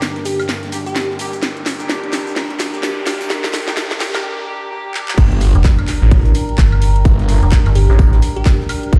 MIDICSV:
0, 0, Header, 1, 10, 480
1, 0, Start_track
1, 0, Key_signature, -2, "minor"
1, 0, Tempo, 468750
1, 1460, Time_signature, 4, 2, 24, 8
1, 9209, End_track
2, 0, Start_track
2, 0, Title_t, "Ambient pad"
2, 0, Program_c, 0, 92
2, 0, Note_on_c, 0, 62, 75
2, 0, Note_on_c, 0, 70, 76
2, 0, Note_on_c, 0, 79, 78
2, 4341, Note_off_c, 0, 62, 0
2, 4341, Note_off_c, 0, 70, 0
2, 4341, Note_off_c, 0, 79, 0
2, 5301, Note_on_c, 0, 62, 95
2, 5388, Note_on_c, 0, 70, 88
2, 5711, Note_on_c, 0, 79, 71
2, 9209, Note_off_c, 0, 62, 0
2, 9209, Note_off_c, 0, 70, 0
2, 9209, Note_off_c, 0, 79, 0
2, 9209, End_track
3, 0, Start_track
3, 0, Title_t, "Analog synth pad"
3, 0, Program_c, 1, 89
3, 0, Note_on_c, 1, 55, 86
3, 0, Note_on_c, 1, 62, 74
3, 0, Note_on_c, 1, 70, 93
3, 4300, Note_off_c, 1, 55, 0
3, 4300, Note_off_c, 1, 62, 0
3, 4300, Note_off_c, 1, 70, 0
3, 5301, Note_on_c, 1, 67, 89
3, 5301, Note_on_c, 1, 74, 77
3, 5301, Note_on_c, 1, 82, 93
3, 9131, Note_off_c, 1, 82, 0
3, 9209, Note_off_c, 1, 67, 0
3, 9209, Note_off_c, 1, 74, 0
3, 9209, End_track
4, 0, Start_track
4, 0, Title_t, "Synth pluck"
4, 0, Program_c, 2, 84
4, 261, Note_on_c, 2, 67, 87
4, 451, Note_off_c, 2, 67, 0
4, 885, Note_on_c, 2, 67, 88
4, 1365, Note_off_c, 2, 67, 0
4, 4100, Note_on_c, 2, 67, 91
4, 4290, Note_off_c, 2, 67, 0
4, 7940, Note_on_c, 2, 67, 90
4, 8131, Note_off_c, 2, 67, 0
4, 8565, Note_on_c, 2, 67, 93
4, 9045, Note_off_c, 2, 67, 0
4, 9209, End_track
5, 0, Start_track
5, 0, Title_t, "Horn section"
5, 0, Program_c, 3, 61
5, 741, Note_on_c, 3, 58, 83
5, 741, Note_on_c, 3, 62, 76
5, 741, Note_on_c, 3, 67, 93
5, 817, Note_off_c, 3, 62, 0
5, 817, Note_off_c, 3, 67, 0
5, 818, Note_off_c, 3, 58, 0
5, 1221, Note_on_c, 3, 58, 90
5, 1221, Note_on_c, 3, 62, 83
5, 1221, Note_on_c, 3, 67, 97
5, 1343, Note_off_c, 3, 58, 0
5, 1343, Note_off_c, 3, 62, 0
5, 1343, Note_off_c, 3, 67, 0
5, 1845, Note_on_c, 3, 58, 83
5, 1845, Note_on_c, 3, 62, 75
5, 1845, Note_on_c, 3, 67, 90
5, 2405, Note_off_c, 3, 58, 0
5, 2405, Note_off_c, 3, 62, 0
5, 2405, Note_off_c, 3, 67, 0
5, 2805, Note_on_c, 3, 58, 88
5, 2805, Note_on_c, 3, 62, 79
5, 2805, Note_on_c, 3, 67, 96
5, 3365, Note_off_c, 3, 58, 0
5, 3365, Note_off_c, 3, 62, 0
5, 3365, Note_off_c, 3, 67, 0
5, 3765, Note_on_c, 3, 58, 87
5, 3765, Note_on_c, 3, 62, 78
5, 3765, Note_on_c, 3, 67, 93
5, 3845, Note_off_c, 3, 58, 0
5, 3845, Note_off_c, 3, 62, 0
5, 3845, Note_off_c, 3, 67, 0
5, 4244, Note_on_c, 3, 58, 89
5, 4244, Note_on_c, 3, 62, 84
5, 4245, Note_on_c, 3, 67, 98
5, 4325, Note_off_c, 3, 58, 0
5, 4325, Note_off_c, 3, 62, 0
5, 4325, Note_off_c, 3, 67, 0
5, 4340, Note_on_c, 3, 58, 87
5, 4340, Note_on_c, 3, 62, 83
5, 4340, Note_on_c, 3, 67, 97
5, 4565, Note_off_c, 3, 58, 0
5, 4565, Note_off_c, 3, 62, 0
5, 4565, Note_off_c, 3, 67, 0
5, 4580, Note_on_c, 3, 58, 93
5, 4580, Note_on_c, 3, 62, 86
5, 4580, Note_on_c, 3, 67, 100
5, 4805, Note_off_c, 3, 58, 0
5, 4805, Note_off_c, 3, 62, 0
5, 4805, Note_off_c, 3, 67, 0
5, 4821, Note_on_c, 3, 58, 91
5, 4821, Note_on_c, 3, 62, 86
5, 4821, Note_on_c, 3, 67, 99
5, 5045, Note_off_c, 3, 58, 0
5, 5045, Note_off_c, 3, 62, 0
5, 5045, Note_off_c, 3, 67, 0
5, 5061, Note_on_c, 3, 58, 98
5, 5061, Note_on_c, 3, 62, 92
5, 5061, Note_on_c, 3, 67, 109
5, 5286, Note_off_c, 3, 58, 0
5, 5286, Note_off_c, 3, 62, 0
5, 5286, Note_off_c, 3, 67, 0
5, 9209, End_track
6, 0, Start_track
6, 0, Title_t, "Detuned saw bass"
6, 0, Program_c, 4, 39
6, 5301, Note_on_c, 4, 31, 99
6, 5662, Note_off_c, 4, 31, 0
6, 6164, Note_on_c, 4, 33, 95
6, 6485, Note_off_c, 4, 33, 0
6, 7221, Note_on_c, 4, 31, 98
6, 7582, Note_off_c, 4, 31, 0
6, 8085, Note_on_c, 4, 33, 98
6, 8405, Note_off_c, 4, 33, 0
6, 9141, Note_on_c, 4, 31, 98
6, 9209, Note_off_c, 4, 31, 0
6, 9209, End_track
7, 0, Start_track
7, 0, Title_t, "FM bass"
7, 0, Program_c, 5, 39
7, 5685, Note_on_c, 5, 29, 99
7, 5902, Note_off_c, 5, 29, 0
7, 6741, Note_on_c, 5, 31, 99
7, 7205, Note_off_c, 5, 31, 0
7, 7605, Note_on_c, 5, 29, 97
7, 7822, Note_off_c, 5, 29, 0
7, 7845, Note_on_c, 5, 31, 100
7, 8062, Note_off_c, 5, 31, 0
7, 9209, End_track
8, 0, Start_track
8, 0, Title_t, "Impact"
8, 0, Program_c, 6, 103
8, 5300, Note_on_c, 6, 60, 77
8, 7220, Note_off_c, 6, 60, 0
8, 9209, End_track
9, 0, Start_track
9, 0, Title_t, "Riser"
9, 0, Program_c, 7, 103
9, 0, Note_on_c, 7, 60, 78
9, 4340, Note_off_c, 7, 60, 0
9, 9209, End_track
10, 0, Start_track
10, 0, Title_t, "Drums"
10, 18, Note_on_c, 9, 38, 111
10, 20, Note_off_c, 9, 38, 0
10, 20, Note_on_c, 9, 38, 64
10, 20, Note_on_c, 9, 42, 83
10, 22, Note_on_c, 9, 54, 88
10, 23, Note_on_c, 9, 82, 36
10, 123, Note_off_c, 9, 38, 0
10, 123, Note_off_c, 9, 42, 0
10, 124, Note_off_c, 9, 54, 0
10, 126, Note_off_c, 9, 82, 0
10, 161, Note_on_c, 9, 38, 49
10, 165, Note_on_c, 9, 42, 37
10, 261, Note_on_c, 9, 46, 111
10, 262, Note_on_c, 9, 82, 90
10, 263, Note_off_c, 9, 38, 0
10, 263, Note_on_c, 9, 54, 65
10, 267, Note_off_c, 9, 42, 0
10, 363, Note_off_c, 9, 46, 0
10, 365, Note_off_c, 9, 54, 0
10, 365, Note_off_c, 9, 82, 0
10, 403, Note_on_c, 9, 82, 51
10, 404, Note_on_c, 9, 38, 59
10, 405, Note_on_c, 9, 76, 76
10, 499, Note_off_c, 9, 82, 0
10, 499, Note_on_c, 9, 82, 39
10, 500, Note_off_c, 9, 38, 0
10, 500, Note_on_c, 9, 38, 62
10, 500, Note_on_c, 9, 42, 78
10, 503, Note_on_c, 9, 54, 86
10, 507, Note_off_c, 9, 76, 0
10, 602, Note_off_c, 9, 82, 0
10, 603, Note_off_c, 9, 38, 0
10, 603, Note_off_c, 9, 42, 0
10, 605, Note_off_c, 9, 54, 0
10, 645, Note_on_c, 9, 42, 36
10, 646, Note_on_c, 9, 38, 55
10, 739, Note_on_c, 9, 54, 66
10, 740, Note_on_c, 9, 46, 106
10, 746, Note_on_c, 9, 82, 95
10, 747, Note_off_c, 9, 42, 0
10, 749, Note_off_c, 9, 38, 0
10, 841, Note_off_c, 9, 54, 0
10, 842, Note_off_c, 9, 46, 0
10, 848, Note_off_c, 9, 82, 0
10, 884, Note_on_c, 9, 42, 39
10, 884, Note_on_c, 9, 82, 55
10, 980, Note_off_c, 9, 42, 0
10, 980, Note_on_c, 9, 38, 70
10, 980, Note_on_c, 9, 42, 80
10, 983, Note_on_c, 9, 54, 90
10, 985, Note_off_c, 9, 82, 0
10, 985, Note_on_c, 9, 82, 41
10, 1083, Note_off_c, 9, 38, 0
10, 1083, Note_off_c, 9, 42, 0
10, 1085, Note_off_c, 9, 54, 0
10, 1087, Note_off_c, 9, 82, 0
10, 1126, Note_on_c, 9, 38, 44
10, 1220, Note_on_c, 9, 46, 110
10, 1222, Note_off_c, 9, 38, 0
10, 1222, Note_on_c, 9, 38, 43
10, 1226, Note_on_c, 9, 54, 72
10, 1228, Note_on_c, 9, 82, 86
10, 1322, Note_off_c, 9, 46, 0
10, 1324, Note_off_c, 9, 38, 0
10, 1329, Note_off_c, 9, 54, 0
10, 1330, Note_off_c, 9, 82, 0
10, 1363, Note_on_c, 9, 82, 56
10, 1364, Note_on_c, 9, 42, 54
10, 1456, Note_off_c, 9, 82, 0
10, 1456, Note_on_c, 9, 82, 37
10, 1460, Note_off_c, 9, 42, 0
10, 1460, Note_on_c, 9, 38, 73
10, 1460, Note_on_c, 9, 42, 78
10, 1460, Note_on_c, 9, 54, 84
10, 1558, Note_off_c, 9, 82, 0
10, 1562, Note_off_c, 9, 54, 0
10, 1563, Note_off_c, 9, 38, 0
10, 1563, Note_off_c, 9, 42, 0
10, 1605, Note_on_c, 9, 42, 37
10, 1699, Note_on_c, 9, 54, 69
10, 1700, Note_on_c, 9, 38, 78
10, 1700, Note_on_c, 9, 46, 113
10, 1707, Note_off_c, 9, 42, 0
10, 1708, Note_on_c, 9, 82, 100
10, 1802, Note_off_c, 9, 38, 0
10, 1802, Note_off_c, 9, 46, 0
10, 1802, Note_off_c, 9, 54, 0
10, 1810, Note_off_c, 9, 82, 0
10, 1839, Note_on_c, 9, 82, 58
10, 1844, Note_on_c, 9, 42, 50
10, 1939, Note_on_c, 9, 38, 121
10, 1940, Note_off_c, 9, 38, 0
10, 1940, Note_off_c, 9, 42, 0
10, 1940, Note_on_c, 9, 38, 81
10, 1940, Note_on_c, 9, 42, 79
10, 1942, Note_off_c, 9, 82, 0
10, 1945, Note_on_c, 9, 54, 82
10, 1950, Note_on_c, 9, 82, 46
10, 2043, Note_off_c, 9, 38, 0
10, 2043, Note_off_c, 9, 42, 0
10, 2048, Note_off_c, 9, 54, 0
10, 2052, Note_off_c, 9, 82, 0
10, 2084, Note_on_c, 9, 42, 36
10, 2176, Note_on_c, 9, 82, 94
10, 2180, Note_on_c, 9, 38, 82
10, 2180, Note_on_c, 9, 46, 115
10, 2180, Note_on_c, 9, 54, 68
10, 2187, Note_off_c, 9, 42, 0
10, 2279, Note_off_c, 9, 82, 0
10, 2282, Note_off_c, 9, 38, 0
10, 2282, Note_off_c, 9, 46, 0
10, 2282, Note_off_c, 9, 54, 0
10, 2321, Note_on_c, 9, 82, 56
10, 2416, Note_on_c, 9, 46, 77
10, 2420, Note_on_c, 9, 38, 81
10, 2420, Note_on_c, 9, 42, 75
10, 2421, Note_off_c, 9, 82, 0
10, 2421, Note_on_c, 9, 82, 43
10, 2519, Note_off_c, 9, 46, 0
10, 2523, Note_off_c, 9, 38, 0
10, 2523, Note_off_c, 9, 42, 0
10, 2524, Note_off_c, 9, 82, 0
10, 2564, Note_on_c, 9, 42, 35
10, 2569, Note_off_c, 9, 42, 0
10, 2569, Note_on_c, 9, 42, 42
10, 2654, Note_on_c, 9, 82, 106
10, 2660, Note_on_c, 9, 38, 85
10, 2660, Note_on_c, 9, 46, 117
10, 2665, Note_on_c, 9, 54, 67
10, 2672, Note_off_c, 9, 42, 0
10, 2757, Note_off_c, 9, 82, 0
10, 2762, Note_off_c, 9, 38, 0
10, 2762, Note_off_c, 9, 46, 0
10, 2767, Note_off_c, 9, 54, 0
10, 2802, Note_on_c, 9, 82, 56
10, 2804, Note_on_c, 9, 42, 37
10, 2894, Note_on_c, 9, 38, 118
10, 2898, Note_off_c, 9, 82, 0
10, 2898, Note_on_c, 9, 82, 42
10, 2900, Note_off_c, 9, 38, 0
10, 2900, Note_off_c, 9, 42, 0
10, 2900, Note_on_c, 9, 38, 90
10, 2900, Note_on_c, 9, 42, 79
10, 2901, Note_on_c, 9, 54, 93
10, 3000, Note_off_c, 9, 82, 0
10, 3002, Note_off_c, 9, 38, 0
10, 3002, Note_off_c, 9, 42, 0
10, 3003, Note_off_c, 9, 54, 0
10, 3131, Note_on_c, 9, 38, 113
10, 3135, Note_on_c, 9, 54, 88
10, 3136, Note_on_c, 9, 82, 97
10, 3140, Note_off_c, 9, 38, 0
10, 3140, Note_on_c, 9, 38, 93
10, 3140, Note_on_c, 9, 46, 117
10, 3140, Note_on_c, 9, 76, 66
10, 3237, Note_off_c, 9, 54, 0
10, 3238, Note_off_c, 9, 82, 0
10, 3243, Note_off_c, 9, 38, 0
10, 3243, Note_off_c, 9, 46, 0
10, 3243, Note_off_c, 9, 76, 0
10, 3284, Note_on_c, 9, 42, 55
10, 3286, Note_on_c, 9, 38, 95
10, 3286, Note_on_c, 9, 54, 87
10, 3287, Note_on_c, 9, 82, 61
10, 3380, Note_off_c, 9, 38, 0
10, 3380, Note_off_c, 9, 42, 0
10, 3380, Note_on_c, 9, 38, 95
10, 3380, Note_on_c, 9, 42, 76
10, 3382, Note_off_c, 9, 54, 0
10, 3382, Note_off_c, 9, 82, 0
10, 3382, Note_on_c, 9, 54, 85
10, 3382, Note_on_c, 9, 82, 43
10, 3385, Note_off_c, 9, 38, 0
10, 3385, Note_on_c, 9, 38, 102
10, 3483, Note_off_c, 9, 42, 0
10, 3484, Note_off_c, 9, 54, 0
10, 3484, Note_off_c, 9, 82, 0
10, 3488, Note_off_c, 9, 38, 0
10, 3525, Note_on_c, 9, 38, 88
10, 3525, Note_on_c, 9, 42, 37
10, 3529, Note_on_c, 9, 54, 85
10, 3533, Note_off_c, 9, 38, 0
10, 3533, Note_on_c, 9, 38, 100
10, 3614, Note_off_c, 9, 54, 0
10, 3614, Note_on_c, 9, 54, 76
10, 3620, Note_off_c, 9, 38, 0
10, 3620, Note_on_c, 9, 38, 94
10, 3620, Note_on_c, 9, 46, 115
10, 3620, Note_on_c, 9, 82, 101
10, 3627, Note_off_c, 9, 42, 0
10, 3716, Note_off_c, 9, 54, 0
10, 3722, Note_off_c, 9, 38, 0
10, 3722, Note_off_c, 9, 46, 0
10, 3723, Note_off_c, 9, 82, 0
10, 3765, Note_on_c, 9, 38, 84
10, 3765, Note_on_c, 9, 42, 51
10, 3765, Note_on_c, 9, 82, 57
10, 3771, Note_off_c, 9, 38, 0
10, 3771, Note_on_c, 9, 38, 42
10, 3860, Note_off_c, 9, 38, 0
10, 3860, Note_off_c, 9, 42, 0
10, 3860, Note_on_c, 9, 38, 99
10, 3860, Note_on_c, 9, 42, 77
10, 3864, Note_off_c, 9, 38, 0
10, 3864, Note_on_c, 9, 38, 111
10, 3864, Note_on_c, 9, 54, 98
10, 3865, Note_off_c, 9, 82, 0
10, 3865, Note_on_c, 9, 82, 43
10, 3963, Note_off_c, 9, 42, 0
10, 3966, Note_off_c, 9, 38, 0
10, 3967, Note_off_c, 9, 54, 0
10, 3968, Note_off_c, 9, 82, 0
10, 4005, Note_on_c, 9, 38, 86
10, 4005, Note_on_c, 9, 42, 38
10, 4012, Note_off_c, 9, 38, 0
10, 4012, Note_on_c, 9, 38, 59
10, 4098, Note_on_c, 9, 54, 64
10, 4099, Note_on_c, 9, 82, 94
10, 4101, Note_off_c, 9, 38, 0
10, 4101, Note_on_c, 9, 38, 101
10, 4101, Note_on_c, 9, 46, 111
10, 4107, Note_off_c, 9, 42, 0
10, 4200, Note_off_c, 9, 54, 0
10, 4201, Note_off_c, 9, 82, 0
10, 4203, Note_off_c, 9, 38, 0
10, 4203, Note_off_c, 9, 46, 0
10, 4245, Note_on_c, 9, 38, 89
10, 4245, Note_on_c, 9, 76, 82
10, 4247, Note_off_c, 9, 38, 0
10, 4247, Note_on_c, 9, 38, 62
10, 4250, Note_on_c, 9, 82, 54
10, 4347, Note_off_c, 9, 76, 0
10, 4350, Note_off_c, 9, 38, 0
10, 4352, Note_off_c, 9, 82, 0
10, 5061, Note_on_c, 9, 39, 91
10, 5163, Note_off_c, 9, 39, 0
10, 5205, Note_on_c, 9, 39, 101
10, 5301, Note_on_c, 9, 36, 124
10, 5301, Note_on_c, 9, 42, 84
10, 5301, Note_on_c, 9, 49, 108
10, 5303, Note_on_c, 9, 54, 82
10, 5307, Note_off_c, 9, 39, 0
10, 5403, Note_off_c, 9, 36, 0
10, 5403, Note_off_c, 9, 42, 0
10, 5403, Note_off_c, 9, 49, 0
10, 5405, Note_off_c, 9, 54, 0
10, 5445, Note_on_c, 9, 42, 41
10, 5532, Note_on_c, 9, 54, 72
10, 5540, Note_on_c, 9, 46, 114
10, 5547, Note_off_c, 9, 42, 0
10, 5634, Note_off_c, 9, 54, 0
10, 5643, Note_off_c, 9, 46, 0
10, 5685, Note_on_c, 9, 42, 55
10, 5777, Note_on_c, 9, 39, 127
10, 5780, Note_off_c, 9, 42, 0
10, 5780, Note_on_c, 9, 42, 84
10, 5781, Note_on_c, 9, 36, 107
10, 5781, Note_on_c, 9, 38, 112
10, 5790, Note_on_c, 9, 54, 92
10, 5879, Note_off_c, 9, 39, 0
10, 5883, Note_off_c, 9, 36, 0
10, 5883, Note_off_c, 9, 38, 0
10, 5883, Note_off_c, 9, 42, 0
10, 5892, Note_off_c, 9, 54, 0
10, 5925, Note_on_c, 9, 42, 39
10, 5925, Note_on_c, 9, 76, 69
10, 6017, Note_on_c, 9, 39, 65
10, 6018, Note_on_c, 9, 54, 61
10, 6020, Note_on_c, 9, 46, 110
10, 6027, Note_off_c, 9, 42, 0
10, 6027, Note_off_c, 9, 76, 0
10, 6120, Note_off_c, 9, 39, 0
10, 6121, Note_off_c, 9, 54, 0
10, 6123, Note_off_c, 9, 46, 0
10, 6260, Note_on_c, 9, 42, 85
10, 6261, Note_on_c, 9, 36, 121
10, 6262, Note_on_c, 9, 46, 87
10, 6363, Note_off_c, 9, 36, 0
10, 6363, Note_off_c, 9, 42, 0
10, 6365, Note_off_c, 9, 46, 0
10, 6405, Note_on_c, 9, 42, 38
10, 6407, Note_off_c, 9, 42, 0
10, 6407, Note_on_c, 9, 42, 47
10, 6494, Note_on_c, 9, 54, 70
10, 6500, Note_on_c, 9, 46, 113
10, 6509, Note_off_c, 9, 42, 0
10, 6597, Note_off_c, 9, 54, 0
10, 6603, Note_off_c, 9, 46, 0
10, 6645, Note_on_c, 9, 42, 38
10, 6738, Note_on_c, 9, 39, 127
10, 6739, Note_on_c, 9, 54, 83
10, 6740, Note_on_c, 9, 38, 111
10, 6741, Note_off_c, 9, 42, 0
10, 6741, Note_on_c, 9, 36, 105
10, 6741, Note_on_c, 9, 42, 85
10, 6840, Note_off_c, 9, 39, 0
10, 6842, Note_off_c, 9, 54, 0
10, 6843, Note_off_c, 9, 36, 0
10, 6843, Note_off_c, 9, 38, 0
10, 6843, Note_off_c, 9, 42, 0
10, 6885, Note_on_c, 9, 76, 78
10, 6972, Note_on_c, 9, 38, 48
10, 6979, Note_on_c, 9, 54, 76
10, 6981, Note_on_c, 9, 46, 115
10, 6988, Note_off_c, 9, 76, 0
10, 7074, Note_off_c, 9, 38, 0
10, 7081, Note_off_c, 9, 54, 0
10, 7083, Note_off_c, 9, 46, 0
10, 7125, Note_on_c, 9, 42, 57
10, 7221, Note_off_c, 9, 42, 0
10, 7221, Note_on_c, 9, 36, 126
10, 7221, Note_on_c, 9, 42, 84
10, 7225, Note_on_c, 9, 54, 86
10, 7323, Note_off_c, 9, 36, 0
10, 7323, Note_off_c, 9, 42, 0
10, 7327, Note_off_c, 9, 54, 0
10, 7365, Note_on_c, 9, 42, 41
10, 7369, Note_on_c, 9, 38, 46
10, 7460, Note_on_c, 9, 46, 115
10, 7460, Note_on_c, 9, 54, 70
10, 7467, Note_off_c, 9, 42, 0
10, 7471, Note_off_c, 9, 38, 0
10, 7563, Note_off_c, 9, 46, 0
10, 7563, Note_off_c, 9, 54, 0
10, 7605, Note_on_c, 9, 42, 52
10, 7606, Note_on_c, 9, 38, 43
10, 7694, Note_on_c, 9, 54, 85
10, 7697, Note_on_c, 9, 39, 127
10, 7701, Note_off_c, 9, 42, 0
10, 7701, Note_on_c, 9, 36, 109
10, 7701, Note_on_c, 9, 42, 84
10, 7702, Note_off_c, 9, 38, 0
10, 7702, Note_on_c, 9, 38, 111
10, 7797, Note_off_c, 9, 54, 0
10, 7800, Note_off_c, 9, 39, 0
10, 7803, Note_off_c, 9, 36, 0
10, 7803, Note_off_c, 9, 42, 0
10, 7804, Note_off_c, 9, 38, 0
10, 7841, Note_on_c, 9, 38, 51
10, 7845, Note_on_c, 9, 42, 39
10, 7845, Note_on_c, 9, 76, 66
10, 7935, Note_on_c, 9, 54, 64
10, 7940, Note_on_c, 9, 46, 112
10, 7943, Note_off_c, 9, 38, 0
10, 7947, Note_off_c, 9, 42, 0
10, 7947, Note_off_c, 9, 76, 0
10, 8038, Note_off_c, 9, 54, 0
10, 8043, Note_off_c, 9, 46, 0
10, 8086, Note_on_c, 9, 38, 56
10, 8181, Note_on_c, 9, 36, 124
10, 8181, Note_on_c, 9, 42, 78
10, 8183, Note_on_c, 9, 54, 97
10, 8189, Note_off_c, 9, 38, 0
10, 8283, Note_off_c, 9, 36, 0
10, 8283, Note_off_c, 9, 42, 0
10, 8285, Note_off_c, 9, 54, 0
10, 8320, Note_on_c, 9, 38, 49
10, 8325, Note_on_c, 9, 42, 37
10, 8415, Note_on_c, 9, 54, 74
10, 8421, Note_on_c, 9, 46, 112
10, 8422, Note_off_c, 9, 38, 0
10, 8427, Note_off_c, 9, 42, 0
10, 8517, Note_off_c, 9, 54, 0
10, 8523, Note_off_c, 9, 46, 0
10, 8565, Note_on_c, 9, 42, 38
10, 8655, Note_on_c, 9, 38, 115
10, 8657, Note_on_c, 9, 39, 127
10, 8659, Note_on_c, 9, 54, 94
10, 8661, Note_off_c, 9, 42, 0
10, 8661, Note_on_c, 9, 36, 108
10, 8661, Note_on_c, 9, 42, 81
10, 8758, Note_off_c, 9, 38, 0
10, 8760, Note_off_c, 9, 39, 0
10, 8762, Note_off_c, 9, 54, 0
10, 8763, Note_off_c, 9, 36, 0
10, 8763, Note_off_c, 9, 42, 0
10, 8807, Note_on_c, 9, 38, 48
10, 8896, Note_off_c, 9, 38, 0
10, 8896, Note_on_c, 9, 38, 43
10, 8901, Note_on_c, 9, 46, 115
10, 8901, Note_on_c, 9, 76, 84
10, 8908, Note_on_c, 9, 54, 74
10, 8999, Note_off_c, 9, 38, 0
10, 9003, Note_off_c, 9, 46, 0
10, 9003, Note_off_c, 9, 76, 0
10, 9011, Note_off_c, 9, 54, 0
10, 9045, Note_on_c, 9, 42, 56
10, 9141, Note_off_c, 9, 42, 0
10, 9141, Note_on_c, 9, 36, 124
10, 9141, Note_on_c, 9, 42, 81
10, 9144, Note_on_c, 9, 54, 96
10, 9209, Note_off_c, 9, 36, 0
10, 9209, Note_off_c, 9, 42, 0
10, 9209, Note_off_c, 9, 54, 0
10, 9209, End_track
0, 0, End_of_file